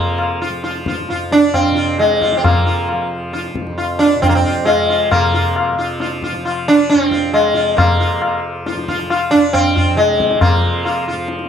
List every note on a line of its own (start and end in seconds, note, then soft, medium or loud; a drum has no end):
0.00 1.10 F2 soft
0.00 1.71 C3 soft
0.00 0.50 F3 medium
0.00 0.39 A#3 medium
0.18 tabla na medium
0.42 0.63 F4 soft
0.50 2.32 F3 medium
0.64 0.85 F4 soft
0.64 tabla te medium
0.76 tabla te medium
0.86 1.08 F4 soft
0.86 tabla ke medium
0.98 tabla te medium
1.09 3.53 F2 medium
1.09 1.31 F4 soft
1.09 tabla te medium
1.32 1.53 D4 medium
1.32 tabla te medium
1.54 1.99 C4 medium
1.54 tabla na medium
1.54 tabla ge medium
1.71 4.15 C3 medium
1.75 1.97 F4 soft
1.75 tabla te medium
1.99 2.37 G#3 medium
1.99 tabla te medium
2.10 tabla te soft
2.21 2.42 F4 soft
2.21 tabla ke medium
2.32 2.94 F3 medium
2.32 tabla te medium
2.37 2.43 C4 medium
2.44 3.07 A#3 medium
2.44 tabla na medium
2.44 tabla ge medium
2.66 2.87 F4 soft
2.89 tabla na medium
2.94 4.76 F3 medium
3.33 3.54 F4 soft
3.33 tabla te medium
3.45 tabla te soft
3.54 6.94 F2 medium
3.54 tabla ke soft
3.67 tabla te medium
3.78 3.99 F4 soft
3.78 tabla na medium
3.99 4.22 D4 medium
3.99 4.21 F4 soft
4.15 5.12 C3 soft
4.22 4.29 C4 medium
4.22 4.43 F4 soft
4.22 tabla na medium
4.22 tabla ge medium
4.29 4.35 A#3 medium
4.35 4.68 C4 medium
4.45 4.64 F4 soft
4.45 tabla ge soft
4.65 5.11 G#3 medium
4.65 4.87 F4 soft
4.65 tabla na medium
4.76 5.72 F3 soft
4.90 5.10 F4 soft
5.11 7.54 C3 medium
5.11 5.74 A#3 medium
5.11 tabla na medium
5.11 tabla ge medium
5.34 5.55 F4 soft
5.56 tabla na medium
5.72 6.32 F3 medium
5.79 5.99 F4 soft
6.00 6.22 F4 soft
6.00 tabla te medium
6.12 tabla te medium
6.23 6.44 F4 soft
6.23 tabla ke medium
6.32 8.13 F3 medium
6.32 tabla te medium
6.45 6.66 F4 soft
6.45 tabla na medium
6.68 6.88 D4 medium
6.90 7.05 C#4 medium
6.90 tabla te medium
6.94 9.34 F2 medium
7.01 7.33 C4 medium
7.01 tabla te medium
7.11 7.32 F4 soft
7.11 tabla ke medium
7.23 tabla te soft
7.33 7.76 G#3 medium
7.33 tabla na medium
7.54 9.94 C3 medium
7.54 7.75 F4 soft
7.77 8.39 A#3 medium
7.77 tabla na loud
7.77 tabla ge medium
8.00 8.20 F4 soft
8.14 8.74 F3 medium
8.22 tabla na medium
8.66 8.87 F4 soft
8.66 tabla te medium
8.74 10.55 F3 medium
8.74 tabla te medium
8.88 9.09 F4 soft
8.88 tabla ke medium
8.99 tabla te medium
9.10 9.31 F4 soft
9.10 tabla na medium
9.31 11.49 F2 medium
9.31 9.52 D4 medium
9.53 9.97 C4 loud
9.53 tabla na medium
9.53 tabla ge medium
9.76 9.96 F4 soft
9.76 tabla ge soft
9.95 11.49 C3 medium
9.95 10.41 G#3 medium
9.95 tabla te medium
10.09 tabla te medium
10.20 tabla ke medium
10.31 tabla te medium
10.41 11.03 A#3 medium
10.41 tabla na loud
10.41 tabla ge medium
10.55 11.13 F3 medium
10.85 11.06 F4 soft
10.85 tabla na medium
11.08 11.28 F4 soft
11.13 11.49 F3 medium
11.28 tabla te medium
11.39 tabla te soft